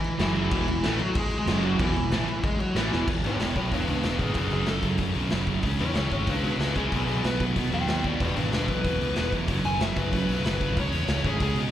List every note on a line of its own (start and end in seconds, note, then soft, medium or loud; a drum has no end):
0.00 0.18 E3 medium
0.00 0.21 E4 medium
0.04 crash medium
0.19 0.50 F#1 loud
0.19 0.51 F#2 loud
0.19 0.51 C#3 loud
0.19 0.35 E3 medium
0.19 0.52 F#3 loud
0.19 0.35 E4 medium
0.19 snare loud
0.19 crash medium
0.36 0.66 E3 medium
0.36 0.66 E4 medium
0.36 crash medium
0.52 0.67 E1 medium
0.52 0.67 E2 loud
0.52 0.67 B2 medium
0.52 0.68 E3 loud
0.52 kick loud
0.52 crash medium
0.68 0.83 E1 medium
0.68 0.81 E2 medium
0.68 0.81 B2 medium
0.68 0.98 E3 medium
0.68 0.98 E4 medium
0.68 crash medium
0.84 0.99 A1 medium
0.84 1.00 A2 medium
0.84 1.00 E3 loud
0.84 1.00 A3 loud
0.84 snare loud
0.84 crash medium
0.99 1.15 F#3 medium
0.99 1.17 F#4 medium
0.99 crash medium
1.15 1.38 G#3 medium
1.15 1.37 G#4 loud
1.15 kick loud
1.15 crash loud
1.31 crash medium
1.39 1.62 G#3 medium
1.39 1.64 G#4 medium
1.47 1.77 F#1 medium
1.47 1.79 F#2 loud
1.47 1.79 C#3 medium
1.47 1.80 F#3 loud
1.47 snare loud
1.47 crash medium
1.63 1.79 F#3 medium
1.63 1.80 F#4 medium
1.63 crash medium
1.79 1.94 E1 loud
1.79 1.95 E2 medium
1.79 1.95 B2 loud
1.79 1.95 E3 loud
1.79 2.40 E3 medium
1.79 2.46 E4 loud
1.79 kick loud
1.79 crash loud
1.96 2.10 E1 medium
1.96 2.09 E2 medium
1.96 2.09 B2 medium
1.96 crash medium
2.11 2.26 A1 medium
2.11 2.28 A2 medium
2.11 2.28 E3 medium
2.11 2.28 A3 medium
2.11 snare loud
2.11 crash medium
2.28 crash medium
2.43 2.58 G#3 medium
2.43 2.58 G#4 medium
2.43 kick loud
2.43 crash medium
2.58 2.74 F#3 medium
2.58 2.76 F#4 medium
2.58 crash medium
2.75 2.90 A1 medium
2.75 2.91 A2 medium
2.75 2.91 E3 medium
2.75 2.92 A3 loud
2.75 2.91 E4 medium
2.75 snare loud
2.75 crash medium
2.91 3.07 E1 medium
2.91 3.06 E2 medium
2.91 3.06 B2 medium
2.91 3.07 E3 loud
2.91 3.07 E3 medium
2.91 3.07 E4 medium
2.91 snare medium
3.07 3.21 E1 medium
3.07 3.23 E2 medium
3.07 3.23 B2 medium
3.07 3.22 E3 medium
3.07 kick loud
3.07 crash loud
3.23 3.37 G#1 medium
3.23 3.38 E2 medium
3.23 3.38 B2 medium
3.23 3.38 E3 medium
3.23 3.40 E4 medium
3.23 3.40 C#5 medium
3.23 open hi-hat medium
3.39 3.53 E1 medium
3.39 3.55 E2 medium
3.39 3.55 B2 medium
3.39 3.55 E3 medium
3.39 3.55 E4 medium
3.39 3.56 C#5 medium
3.39 snare loud
3.39 open hi-hat medium
3.55 3.69 B1 medium
3.55 3.70 E2 medium
3.55 3.70 B2 medium
3.55 3.71 E3 medium
3.55 3.71 E4 medium
3.55 3.72 C#5 medium
3.55 kick medium
3.55 open hi-hat medium
3.71 3.85 E1 medium
3.71 3.87 E2 medium
3.71 3.87 B2 medium
3.71 3.87 E3 loud
3.71 3.87 D4 medium
3.71 3.87 B4 medium
3.71 kick medium
3.71 open hi-hat medium
3.87 4.01 C#2 medium
3.87 4.02 E2 medium
3.87 4.03 B2 medium
3.87 4.03 E3 medium
3.87 4.03 D4 medium
3.87 4.04 B4 medium
3.87 open hi-hat medium
4.03 4.17 E1 medium
4.03 4.18 E2 medium
4.03 4.18 B2 medium
4.03 4.18 E3 medium
4.03 4.19 D4 medium
4.03 4.19 B4 medium
4.03 snare medium
4.03 open hi-hat medium
4.19 4.33 G#1 medium
4.19 4.34 E2 medium
4.19 4.34 B2 medium
4.19 4.34 E3 medium
4.19 4.35 B3 medium
4.19 4.35 G#4 medium
4.19 kick medium
4.19 open hi-hat soft
4.34 4.49 F#1 medium
4.34 4.50 F#2 medium
4.34 4.50 C#3 loud
4.34 4.50 F#3 medium
4.34 4.51 B3 medium
4.34 4.52 G#4 medium
4.34 kick medium
4.34 open hi-hat medium
4.50 4.65 F#1 medium
4.50 4.65 F#2 medium
4.50 4.65 C#3 medium
4.50 4.66 F#3 medium
4.50 4.67 B3 medium
4.50 4.68 G#4 medium
4.50 open hi-hat medium
4.66 4.81 F#1 medium
4.66 4.82 F#2 medium
4.66 4.82 C#3 medium
4.66 4.82 F#3 medium
4.66 4.84 A4 medium
4.66 snare loud
4.66 open hi-hat medium
4.82 4.97 F#1 medium
4.82 4.97 F#2 medium
4.82 4.97 C#3 medium
4.82 4.98 F#3 medium
4.82 kick medium
4.82 open hi-hat medium
4.98 5.14 F#2 medium
4.98 5.13 F#2 medium
4.98 5.13 C#3 loud
4.98 5.13 F#3 loud
4.98 kick medium
4.98 open hi-hat medium
5.14 5.30 B1 medium
5.14 5.30 F#2 medium
5.14 5.30 C#3 medium
5.14 5.31 F#3 medium
5.14 open hi-hat soft
5.30 5.59 F#1 medium
5.30 5.46 F#2 medium
5.30 5.46 C#3 medium
5.30 5.45 F#3 medium
5.30 snare medium
5.30 open hi-hat medium
5.46 5.63 F#2 medium
5.46 5.62 C#3 medium
5.46 5.62 F#3 medium
5.46 kick medium
5.46 open hi-hat soft
5.63 5.77 C#2 medium
5.63 5.79 C#3 medium
5.63 5.80 G#3 loud
5.63 5.79 C#4 loud
5.63 kick medium
5.63 open hi-hat medium
5.79 5.93 E2 medium
5.79 5.95 C#3 medium
5.79 5.95 G#3 medium
5.79 5.96 C#4 medium
5.79 5.95 E4 medium
5.79 5.96 C#5 medium
5.79 open hi-hat medium
5.94 6.08 C#2 medium
5.94 6.13 C#3 medium
5.94 6.11 G#3 medium
5.94 6.11 C#4 medium
5.94 6.11 E4 medium
5.94 6.12 C#5 medium
5.94 snare loud
5.94 open hi-hat medium
6.12 6.25 G#1 medium
6.12 6.27 C#3 medium
6.12 6.27 G#3 medium
6.12 6.28 C#4 medium
6.12 6.27 E4 medium
6.12 6.28 C#5 medium
6.12 kick medium
6.12 open hi-hat medium
6.27 6.41 C#2 loud
6.27 6.44 C#3 medium
6.27 6.43 G#3 loud
6.27 6.43 C#4 loud
6.27 6.42 D4 medium
6.27 6.43 B4 medium
6.27 kick medium
6.27 open hi-hat medium
6.43 6.57 B2 medium
6.43 6.59 C#3 medium
6.43 6.59 G#3 medium
6.43 6.59 C#4 medium
6.43 6.58 D4 medium
6.43 6.58 B4 medium
6.43 open hi-hat medium
6.58 6.72 C#2 medium
6.58 6.76 C#3 medium
6.58 6.75 G#3 medium
6.58 6.74 C#4 loud
6.58 6.75 D4 medium
6.58 6.75 B4 medium
6.58 snare medium
6.58 open hi-hat medium
6.75 6.89 C#2 medium
6.75 6.92 C#3 medium
6.75 6.91 G#3 medium
6.75 6.91 B3 medium
6.75 6.91 C#4 medium
6.75 6.92 G#4 medium
6.75 kick medium
6.75 open hi-hat medium
6.92 7.06 B1 medium
6.92 7.08 B2 medium
6.92 7.08 F#3 medium
6.92 7.09 B3 loud
6.92 7.08 B3 medium
6.92 7.08 G#4 medium
6.92 kick loud
6.92 open hi-hat medium
7.06 7.20 B1 medium
7.06 7.23 B2 medium
7.06 7.24 F#3 medium
7.06 7.24 B3 medium
7.06 7.25 B3 medium
7.06 7.24 G#4 medium
7.06 open hi-hat medium
7.24 7.37 B1 medium
7.24 7.40 B2 medium
7.24 7.40 F#3 medium
7.24 7.40 B3 medium
7.24 7.41 B4 medium
7.24 snare loud
7.24 open hi-hat medium
7.40 7.54 B1 medium
7.40 7.55 B2 medium
7.40 7.56 F#3 medium
7.40 7.56 B3 medium
7.40 kick medium
7.40 open hi-hat medium
7.56 7.73 B2 medium
7.56 7.70 B2 medium
7.56 7.73 F#3 loud
7.56 7.72 B3 loud
7.56 kick medium
7.56 open hi-hat medium
7.70 7.85 E2 medium
7.70 7.88 B2 medium
7.70 7.89 F#3 medium
7.70 7.90 B3 medium
7.70 7.89 B4 medium
7.70 7.89 G5 medium
7.70 open hi-hat soft
7.86 8.14 D#2 medium
7.86 8.05 B2 medium
7.86 8.05 F#3 medium
7.86 8.05 B4 medium
7.86 snare medium
7.86 open hi-hat medium
7.91 8.04 B3 medium
7.91 8.05 G5 medium
8.04 8.20 B2 medium
8.04 8.20 F#3 medium
8.04 8.20 B3 medium
8.04 8.20 F#4 medium
8.04 8.20 D5 medium
8.04 kick medium
8.04 open hi-hat soft
8.20 8.34 E1 medium
8.20 8.36 E2 medium
8.20 8.36 B2 medium
8.20 8.35 E3 medium
8.20 8.35 B4 medium
8.20 8.37 D5 medium
8.20 kick loud
8.20 open hi-hat medium
8.35 8.50 G#1 medium
8.35 8.51 E2 medium
8.35 8.52 B2 medium
8.35 8.52 E3 medium
8.35 8.50 D4 medium
8.35 8.50 B4 medium
8.35 open hi-hat medium
8.51 8.66 E1 medium
8.51 8.68 E2 medium
8.51 8.68 B2 medium
8.51 8.68 E3 loud
8.51 8.67 D4 medium
8.51 8.67 B4 medium
8.51 snare loud
8.51 open hi-hat medium
8.68 8.82 B1 medium
8.68 8.83 E2 medium
8.68 8.84 B2 medium
8.68 8.83 E3 medium
8.68 9.30 B4 medium
8.68 kick medium
8.68 open hi-hat medium
8.84 8.98 E1 medium
8.84 8.99 E2 medium
8.84 8.99 B2 medium
8.84 8.99 E3 loud
8.84 kick medium
8.84 open hi-hat medium
9.00 9.14 C#2 medium
9.00 9.15 E2 medium
9.00 9.16 B2 medium
9.00 9.16 E3 medium
9.00 open hi-hat medium
9.16 9.30 E1 medium
9.16 9.32 E2 medium
9.16 9.31 B2 medium
9.16 9.31 E3 loud
9.16 snare loud
9.16 open hi-hat medium
9.32 9.46 E1 medium
9.32 9.48 E2 medium
9.32 9.48 B2 medium
9.32 9.48 E3 medium
9.32 kick medium
9.32 open hi-hat medium
9.48 9.62 F#1 medium
9.48 9.64 F#2 medium
9.48 9.64 C#3 medium
9.48 9.64 F#3 loud
9.48 kick loud
9.48 open hi-hat medium
9.65 9.78 F#1 loud
9.65 9.80 F#2 medium
9.65 9.80 C#3 medium
9.65 9.80 F#3 medium
9.65 9.81 G#5 loud
9.65 open hi-hat medium
9.79 9.93 F#1 medium
9.79 9.97 F#2 medium
9.79 9.96 C#3 loud
9.79 9.96 F#3 medium
9.79 9.97 E5 medium
9.79 snare loud
9.79 open hi-hat medium
9.96 10.10 F#1 medium
9.96 10.12 F#2 medium
9.96 10.13 C#3 medium
9.96 10.13 F#3 medium
9.96 10.43 B4 loud
9.96 kick medium
9.96 open hi-hat medium
10.12 10.26 F#2 medium
10.12 10.29 F#2 medium
10.12 10.29 C#3 loud
10.12 10.29 F#3 loud
10.12 kick medium
10.12 open hi-hat medium
10.29 10.42 B1 medium
10.29 10.44 F#2 medium
10.29 10.44 C#3 medium
10.29 10.45 F#3 medium
10.29 open hi-hat medium
10.45 10.77 F#1 medium
10.45 10.61 F#2 medium
10.45 10.61 C#3 medium
10.45 10.61 F#3 medium
10.45 10.76 B4 medium
10.45 snare medium
10.45 open hi-hat medium
10.61 10.76 F#2 medium
10.61 10.76 C#3 medium
10.61 10.76 F#3 medium
10.61 kick medium
10.61 open hi-hat soft
10.77 10.90 C#2 medium
10.77 10.93 C#3 loud
10.77 10.93 G#3 loud
10.77 10.92 C#4 loud
10.77 11.25 C#5 medium
10.77 kick loud
10.77 open hi-hat medium
10.92 11.06 E2 loud
10.92 11.08 C#3 medium
10.92 11.08 G#3 medium
10.92 11.08 C#4 loud
10.92 open hi-hat medium
11.08 11.21 C#2 medium
11.08 11.26 C#3 medium
11.08 11.25 G#3 medium
11.08 11.25 C#4 loud
11.08 snare loud
11.08 open hi-hat medium
11.24 11.38 G#1 medium
11.24 11.41 C#3 medium
11.24 11.41 G#3 medium
11.24 11.41 C#4 medium
11.24 11.41 G#4 medium
11.24 kick medium
11.24 open hi-hat medium
11.40 11.54 C#2 medium
11.40 11.57 C#3 loud
11.40 11.57 G#3 loud
11.40 11.56 C#4 loud
11.40 11.57 G#4 loud
11.40 kick loud
11.40 open hi-hat medium
11.55 11.69 B2 medium
11.55 11.71 C#3 medium
11.55 11.71 G#3 medium
11.55 11.71 C#4 medium
11.55 open hi-hat medium